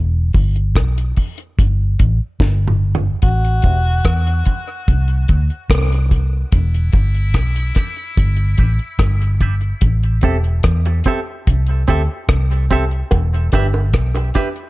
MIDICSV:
0, 0, Header, 1, 6, 480
1, 0, Start_track
1, 0, Tempo, 823045
1, 1885, Time_signature, 4, 2, 24, 8
1, 8571, End_track
2, 0, Start_track
2, 0, Title_t, "Clean electric guitar"
2, 0, Program_c, 0, 27
2, 2122, Note_on_c, 0, 64, 70
2, 2125, Note_on_c, 0, 67, 69
2, 2129, Note_on_c, 0, 72, 75
2, 2134, Note_on_c, 0, 76, 82
2, 2198, Note_off_c, 0, 64, 0
2, 2199, Note_off_c, 0, 67, 0
2, 2201, Note_off_c, 0, 72, 0
2, 2204, Note_off_c, 0, 76, 0
2, 2599, Note_on_c, 0, 64, 74
2, 2604, Note_on_c, 0, 67, 77
2, 2607, Note_on_c, 0, 72, 86
2, 2611, Note_on_c, 0, 76, 74
2, 2677, Note_off_c, 0, 64, 0
2, 2679, Note_off_c, 0, 67, 0
2, 2681, Note_off_c, 0, 72, 0
2, 2683, Note_off_c, 0, 76, 0
2, 3083, Note_on_c, 0, 64, 89
2, 3086, Note_on_c, 0, 67, 82
2, 3088, Note_on_c, 0, 72, 86
2, 3092, Note_on_c, 0, 76, 85
2, 3159, Note_off_c, 0, 64, 0
2, 3161, Note_off_c, 0, 67, 0
2, 3161, Note_off_c, 0, 72, 0
2, 3164, Note_off_c, 0, 76, 0
2, 3568, Note_on_c, 0, 64, 79
2, 3573, Note_on_c, 0, 67, 73
2, 3576, Note_on_c, 0, 72, 85
2, 3578, Note_on_c, 0, 76, 83
2, 3641, Note_off_c, 0, 64, 0
2, 3644, Note_off_c, 0, 67, 0
2, 3646, Note_off_c, 0, 72, 0
2, 3647, Note_off_c, 0, 76, 0
2, 4043, Note_on_c, 0, 62, 73
2, 4048, Note_on_c, 0, 67, 66
2, 4050, Note_on_c, 0, 71, 70
2, 4055, Note_on_c, 0, 76, 73
2, 4119, Note_off_c, 0, 62, 0
2, 4122, Note_off_c, 0, 67, 0
2, 4123, Note_off_c, 0, 71, 0
2, 4125, Note_off_c, 0, 76, 0
2, 4524, Note_on_c, 0, 62, 70
2, 4530, Note_on_c, 0, 67, 81
2, 4533, Note_on_c, 0, 71, 71
2, 4536, Note_on_c, 0, 76, 92
2, 4600, Note_off_c, 0, 62, 0
2, 4603, Note_off_c, 0, 67, 0
2, 4604, Note_off_c, 0, 71, 0
2, 4606, Note_off_c, 0, 76, 0
2, 5007, Note_on_c, 0, 62, 77
2, 5009, Note_on_c, 0, 67, 75
2, 5013, Note_on_c, 0, 71, 84
2, 5016, Note_on_c, 0, 76, 83
2, 5082, Note_off_c, 0, 62, 0
2, 5083, Note_off_c, 0, 67, 0
2, 5085, Note_off_c, 0, 71, 0
2, 5086, Note_off_c, 0, 76, 0
2, 5487, Note_on_c, 0, 62, 74
2, 5492, Note_on_c, 0, 67, 77
2, 5494, Note_on_c, 0, 71, 76
2, 5499, Note_on_c, 0, 76, 85
2, 5562, Note_off_c, 0, 62, 0
2, 5564, Note_off_c, 0, 67, 0
2, 5565, Note_off_c, 0, 71, 0
2, 5568, Note_off_c, 0, 76, 0
2, 5967, Note_on_c, 0, 60, 80
2, 5969, Note_on_c, 0, 67, 71
2, 5971, Note_on_c, 0, 69, 79
2, 5976, Note_on_c, 0, 76, 80
2, 6042, Note_off_c, 0, 60, 0
2, 6043, Note_off_c, 0, 67, 0
2, 6044, Note_off_c, 0, 69, 0
2, 6047, Note_off_c, 0, 76, 0
2, 6450, Note_on_c, 0, 60, 82
2, 6455, Note_on_c, 0, 67, 89
2, 6458, Note_on_c, 0, 69, 91
2, 6461, Note_on_c, 0, 76, 90
2, 6524, Note_off_c, 0, 60, 0
2, 6526, Note_off_c, 0, 67, 0
2, 6528, Note_off_c, 0, 69, 0
2, 6529, Note_off_c, 0, 76, 0
2, 6927, Note_on_c, 0, 60, 78
2, 6932, Note_on_c, 0, 67, 88
2, 6936, Note_on_c, 0, 69, 96
2, 6940, Note_on_c, 0, 76, 97
2, 7002, Note_off_c, 0, 60, 0
2, 7005, Note_off_c, 0, 67, 0
2, 7006, Note_off_c, 0, 69, 0
2, 7009, Note_off_c, 0, 76, 0
2, 7410, Note_on_c, 0, 60, 81
2, 7414, Note_on_c, 0, 67, 88
2, 7420, Note_on_c, 0, 69, 91
2, 7421, Note_on_c, 0, 76, 102
2, 7484, Note_off_c, 0, 60, 0
2, 7485, Note_off_c, 0, 67, 0
2, 7488, Note_off_c, 0, 69, 0
2, 7489, Note_off_c, 0, 76, 0
2, 7893, Note_on_c, 0, 62, 73
2, 7894, Note_on_c, 0, 67, 90
2, 7898, Note_on_c, 0, 71, 86
2, 7902, Note_on_c, 0, 76, 92
2, 7965, Note_off_c, 0, 62, 0
2, 7966, Note_off_c, 0, 67, 0
2, 7968, Note_off_c, 0, 71, 0
2, 7969, Note_off_c, 0, 76, 0
2, 8369, Note_on_c, 0, 62, 66
2, 8371, Note_on_c, 0, 67, 77
2, 8375, Note_on_c, 0, 71, 86
2, 8378, Note_on_c, 0, 76, 90
2, 8443, Note_off_c, 0, 62, 0
2, 8444, Note_off_c, 0, 67, 0
2, 8446, Note_off_c, 0, 71, 0
2, 8447, Note_off_c, 0, 76, 0
2, 8571, End_track
3, 0, Start_track
3, 0, Title_t, "Tenor saxophone"
3, 0, Program_c, 1, 66
3, 1885, Note_on_c, 1, 66, 78
3, 3543, Note_off_c, 1, 66, 0
3, 3799, Note_on_c, 1, 64, 86
3, 5461, Note_off_c, 1, 64, 0
3, 8571, End_track
4, 0, Start_track
4, 0, Title_t, "Fingered electric bass"
4, 0, Program_c, 2, 33
4, 0, Note_on_c, 2, 28, 92
4, 176, Note_off_c, 2, 28, 0
4, 204, Note_on_c, 2, 31, 77
4, 443, Note_off_c, 2, 31, 0
4, 443, Note_on_c, 2, 35, 89
4, 655, Note_off_c, 2, 35, 0
4, 927, Note_on_c, 2, 31, 84
4, 1137, Note_off_c, 2, 31, 0
4, 1167, Note_on_c, 2, 33, 83
4, 1274, Note_off_c, 2, 33, 0
4, 1402, Note_on_c, 2, 31, 95
4, 1827, Note_off_c, 2, 31, 0
4, 1884, Note_on_c, 2, 33, 96
4, 2096, Note_off_c, 2, 33, 0
4, 2124, Note_on_c, 2, 28, 78
4, 2336, Note_off_c, 2, 28, 0
4, 2363, Note_on_c, 2, 40, 88
4, 2576, Note_off_c, 2, 40, 0
4, 2849, Note_on_c, 2, 36, 77
4, 3059, Note_off_c, 2, 36, 0
4, 3089, Note_on_c, 2, 38, 72
4, 3196, Note_off_c, 2, 38, 0
4, 3326, Note_on_c, 2, 36, 108
4, 3750, Note_off_c, 2, 36, 0
4, 3807, Note_on_c, 2, 28, 96
4, 4019, Note_off_c, 2, 28, 0
4, 4046, Note_on_c, 2, 31, 79
4, 4284, Note_off_c, 2, 31, 0
4, 4284, Note_on_c, 2, 35, 90
4, 4498, Note_off_c, 2, 35, 0
4, 4770, Note_on_c, 2, 31, 93
4, 4981, Note_off_c, 2, 31, 0
4, 5009, Note_on_c, 2, 33, 88
4, 5117, Note_off_c, 2, 33, 0
4, 5245, Note_on_c, 2, 31, 96
4, 5670, Note_off_c, 2, 31, 0
4, 5729, Note_on_c, 2, 33, 94
4, 5940, Note_off_c, 2, 33, 0
4, 5969, Note_on_c, 2, 28, 82
4, 6180, Note_off_c, 2, 28, 0
4, 6207, Note_on_c, 2, 40, 87
4, 6420, Note_off_c, 2, 40, 0
4, 6693, Note_on_c, 2, 36, 76
4, 6903, Note_off_c, 2, 36, 0
4, 6932, Note_on_c, 2, 38, 71
4, 7039, Note_off_c, 2, 38, 0
4, 7168, Note_on_c, 2, 36, 99
4, 7591, Note_off_c, 2, 36, 0
4, 7653, Note_on_c, 2, 28, 92
4, 7863, Note_off_c, 2, 28, 0
4, 7894, Note_on_c, 2, 31, 87
4, 8130, Note_off_c, 2, 31, 0
4, 8130, Note_on_c, 2, 35, 92
4, 8341, Note_off_c, 2, 35, 0
4, 8571, End_track
5, 0, Start_track
5, 0, Title_t, "Muted clean electric guitar strokes"
5, 2486, Note_on_c, 9, 29, 39
5, 2545, Note_off_c, 9, 29, 0
5, 4410, Note_on_c, 9, 29, 39
5, 4468, Note_off_c, 9, 29, 0
5, 6333, Note_on_c, 9, 29, 39
5, 6391, Note_off_c, 9, 29, 0
5, 8255, Note_on_c, 9, 29, 46
5, 8314, Note_off_c, 9, 29, 0
5, 8571, End_track
6, 0, Start_track
6, 0, Title_t, "Drums"
6, 194, Note_on_c, 9, 46, 43
6, 201, Note_on_c, 9, 36, 90
6, 252, Note_off_c, 9, 46, 0
6, 259, Note_off_c, 9, 36, 0
6, 325, Note_on_c, 9, 42, 50
6, 384, Note_off_c, 9, 42, 0
6, 440, Note_on_c, 9, 36, 112
6, 442, Note_on_c, 9, 42, 76
6, 446, Note_on_c, 9, 37, 98
6, 499, Note_off_c, 9, 36, 0
6, 500, Note_off_c, 9, 42, 0
6, 504, Note_off_c, 9, 37, 0
6, 570, Note_on_c, 9, 42, 60
6, 629, Note_off_c, 9, 42, 0
6, 680, Note_on_c, 9, 46, 69
6, 684, Note_on_c, 9, 36, 68
6, 738, Note_off_c, 9, 46, 0
6, 742, Note_off_c, 9, 36, 0
6, 804, Note_on_c, 9, 42, 55
6, 862, Note_off_c, 9, 42, 0
6, 925, Note_on_c, 9, 36, 113
6, 927, Note_on_c, 9, 42, 83
6, 983, Note_off_c, 9, 36, 0
6, 985, Note_off_c, 9, 42, 0
6, 1163, Note_on_c, 9, 42, 72
6, 1165, Note_on_c, 9, 36, 81
6, 1221, Note_off_c, 9, 42, 0
6, 1223, Note_off_c, 9, 36, 0
6, 1399, Note_on_c, 9, 36, 102
6, 1403, Note_on_c, 9, 38, 54
6, 1458, Note_off_c, 9, 36, 0
6, 1462, Note_off_c, 9, 38, 0
6, 1560, Note_on_c, 9, 45, 69
6, 1619, Note_off_c, 9, 45, 0
6, 1719, Note_on_c, 9, 43, 100
6, 1778, Note_off_c, 9, 43, 0
6, 1878, Note_on_c, 9, 42, 72
6, 1882, Note_on_c, 9, 36, 98
6, 1936, Note_off_c, 9, 42, 0
6, 1941, Note_off_c, 9, 36, 0
6, 2010, Note_on_c, 9, 42, 41
6, 2068, Note_off_c, 9, 42, 0
6, 2112, Note_on_c, 9, 42, 57
6, 2122, Note_on_c, 9, 36, 88
6, 2171, Note_off_c, 9, 42, 0
6, 2180, Note_off_c, 9, 36, 0
6, 2359, Note_on_c, 9, 42, 73
6, 2361, Note_on_c, 9, 36, 91
6, 2363, Note_on_c, 9, 37, 93
6, 2417, Note_off_c, 9, 42, 0
6, 2419, Note_off_c, 9, 36, 0
6, 2422, Note_off_c, 9, 37, 0
6, 2489, Note_on_c, 9, 42, 57
6, 2548, Note_off_c, 9, 42, 0
6, 2598, Note_on_c, 9, 42, 66
6, 2604, Note_on_c, 9, 36, 76
6, 2656, Note_off_c, 9, 42, 0
6, 2663, Note_off_c, 9, 36, 0
6, 2846, Note_on_c, 9, 36, 102
6, 2847, Note_on_c, 9, 42, 79
6, 2904, Note_off_c, 9, 36, 0
6, 2905, Note_off_c, 9, 42, 0
6, 2962, Note_on_c, 9, 42, 47
6, 3020, Note_off_c, 9, 42, 0
6, 3081, Note_on_c, 9, 42, 66
6, 3086, Note_on_c, 9, 36, 80
6, 3140, Note_off_c, 9, 42, 0
6, 3144, Note_off_c, 9, 36, 0
6, 3208, Note_on_c, 9, 42, 31
6, 3266, Note_off_c, 9, 42, 0
6, 3322, Note_on_c, 9, 36, 101
6, 3328, Note_on_c, 9, 37, 103
6, 3332, Note_on_c, 9, 42, 90
6, 3381, Note_off_c, 9, 36, 0
6, 3386, Note_off_c, 9, 37, 0
6, 3390, Note_off_c, 9, 42, 0
6, 3455, Note_on_c, 9, 42, 50
6, 3513, Note_off_c, 9, 42, 0
6, 3565, Note_on_c, 9, 36, 78
6, 3569, Note_on_c, 9, 42, 65
6, 3623, Note_off_c, 9, 36, 0
6, 3627, Note_off_c, 9, 42, 0
6, 3803, Note_on_c, 9, 42, 74
6, 3805, Note_on_c, 9, 36, 104
6, 3862, Note_off_c, 9, 42, 0
6, 3864, Note_off_c, 9, 36, 0
6, 3933, Note_on_c, 9, 42, 44
6, 3991, Note_off_c, 9, 42, 0
6, 4039, Note_on_c, 9, 42, 57
6, 4044, Note_on_c, 9, 36, 88
6, 4097, Note_off_c, 9, 42, 0
6, 4102, Note_off_c, 9, 36, 0
6, 4168, Note_on_c, 9, 42, 34
6, 4226, Note_off_c, 9, 42, 0
6, 4280, Note_on_c, 9, 42, 80
6, 4283, Note_on_c, 9, 36, 109
6, 4285, Note_on_c, 9, 37, 93
6, 4339, Note_off_c, 9, 42, 0
6, 4341, Note_off_c, 9, 36, 0
6, 4343, Note_off_c, 9, 37, 0
6, 4408, Note_on_c, 9, 42, 63
6, 4467, Note_off_c, 9, 42, 0
6, 4519, Note_on_c, 9, 42, 70
6, 4526, Note_on_c, 9, 36, 76
6, 4526, Note_on_c, 9, 37, 53
6, 4577, Note_off_c, 9, 42, 0
6, 4584, Note_off_c, 9, 36, 0
6, 4584, Note_off_c, 9, 37, 0
6, 4644, Note_on_c, 9, 42, 31
6, 4703, Note_off_c, 9, 42, 0
6, 4767, Note_on_c, 9, 36, 105
6, 4768, Note_on_c, 9, 42, 77
6, 4826, Note_off_c, 9, 36, 0
6, 4826, Note_off_c, 9, 42, 0
6, 4879, Note_on_c, 9, 42, 45
6, 4937, Note_off_c, 9, 42, 0
6, 5001, Note_on_c, 9, 42, 69
6, 5007, Note_on_c, 9, 36, 90
6, 5059, Note_off_c, 9, 42, 0
6, 5065, Note_off_c, 9, 36, 0
6, 5127, Note_on_c, 9, 42, 31
6, 5185, Note_off_c, 9, 42, 0
6, 5242, Note_on_c, 9, 36, 99
6, 5245, Note_on_c, 9, 37, 106
6, 5249, Note_on_c, 9, 42, 90
6, 5301, Note_off_c, 9, 36, 0
6, 5303, Note_off_c, 9, 37, 0
6, 5307, Note_off_c, 9, 42, 0
6, 5374, Note_on_c, 9, 42, 50
6, 5433, Note_off_c, 9, 42, 0
6, 5486, Note_on_c, 9, 36, 76
6, 5486, Note_on_c, 9, 42, 61
6, 5544, Note_off_c, 9, 36, 0
6, 5545, Note_off_c, 9, 42, 0
6, 5603, Note_on_c, 9, 42, 33
6, 5661, Note_off_c, 9, 42, 0
6, 5722, Note_on_c, 9, 42, 81
6, 5726, Note_on_c, 9, 36, 104
6, 5780, Note_off_c, 9, 42, 0
6, 5784, Note_off_c, 9, 36, 0
6, 5852, Note_on_c, 9, 42, 45
6, 5910, Note_off_c, 9, 42, 0
6, 5956, Note_on_c, 9, 42, 60
6, 5965, Note_on_c, 9, 36, 85
6, 6015, Note_off_c, 9, 42, 0
6, 6024, Note_off_c, 9, 36, 0
6, 6089, Note_on_c, 9, 42, 35
6, 6147, Note_off_c, 9, 42, 0
6, 6201, Note_on_c, 9, 42, 72
6, 6205, Note_on_c, 9, 36, 106
6, 6205, Note_on_c, 9, 37, 93
6, 6259, Note_off_c, 9, 42, 0
6, 6263, Note_off_c, 9, 36, 0
6, 6264, Note_off_c, 9, 37, 0
6, 6330, Note_on_c, 9, 42, 51
6, 6388, Note_off_c, 9, 42, 0
6, 6438, Note_on_c, 9, 42, 67
6, 6449, Note_on_c, 9, 36, 70
6, 6497, Note_off_c, 9, 42, 0
6, 6507, Note_off_c, 9, 36, 0
6, 6691, Note_on_c, 9, 36, 97
6, 6691, Note_on_c, 9, 42, 81
6, 6749, Note_off_c, 9, 42, 0
6, 6750, Note_off_c, 9, 36, 0
6, 6803, Note_on_c, 9, 42, 41
6, 6862, Note_off_c, 9, 42, 0
6, 6926, Note_on_c, 9, 42, 65
6, 6931, Note_on_c, 9, 36, 75
6, 6984, Note_off_c, 9, 42, 0
6, 6989, Note_off_c, 9, 36, 0
6, 7166, Note_on_c, 9, 36, 105
6, 7167, Note_on_c, 9, 37, 105
6, 7171, Note_on_c, 9, 42, 79
6, 7224, Note_off_c, 9, 36, 0
6, 7225, Note_off_c, 9, 37, 0
6, 7229, Note_off_c, 9, 42, 0
6, 7297, Note_on_c, 9, 42, 47
6, 7356, Note_off_c, 9, 42, 0
6, 7410, Note_on_c, 9, 36, 70
6, 7412, Note_on_c, 9, 42, 73
6, 7468, Note_off_c, 9, 36, 0
6, 7470, Note_off_c, 9, 42, 0
6, 7531, Note_on_c, 9, 42, 33
6, 7589, Note_off_c, 9, 42, 0
6, 7645, Note_on_c, 9, 60, 69
6, 7648, Note_on_c, 9, 42, 73
6, 7651, Note_on_c, 9, 36, 95
6, 7704, Note_off_c, 9, 60, 0
6, 7706, Note_off_c, 9, 42, 0
6, 7709, Note_off_c, 9, 36, 0
6, 7781, Note_on_c, 9, 42, 45
6, 7839, Note_off_c, 9, 42, 0
6, 7884, Note_on_c, 9, 42, 57
6, 7889, Note_on_c, 9, 60, 63
6, 7890, Note_on_c, 9, 36, 89
6, 7943, Note_off_c, 9, 42, 0
6, 7947, Note_off_c, 9, 60, 0
6, 7949, Note_off_c, 9, 36, 0
6, 8012, Note_on_c, 9, 60, 62
6, 8071, Note_off_c, 9, 60, 0
6, 8126, Note_on_c, 9, 42, 74
6, 8128, Note_on_c, 9, 36, 106
6, 8131, Note_on_c, 9, 37, 97
6, 8185, Note_off_c, 9, 42, 0
6, 8187, Note_off_c, 9, 36, 0
6, 8189, Note_off_c, 9, 37, 0
6, 8249, Note_on_c, 9, 60, 53
6, 8255, Note_on_c, 9, 42, 55
6, 8308, Note_off_c, 9, 60, 0
6, 8313, Note_off_c, 9, 42, 0
6, 8364, Note_on_c, 9, 42, 62
6, 8371, Note_on_c, 9, 36, 69
6, 8422, Note_off_c, 9, 42, 0
6, 8429, Note_off_c, 9, 36, 0
6, 8490, Note_on_c, 9, 42, 33
6, 8549, Note_off_c, 9, 42, 0
6, 8571, End_track
0, 0, End_of_file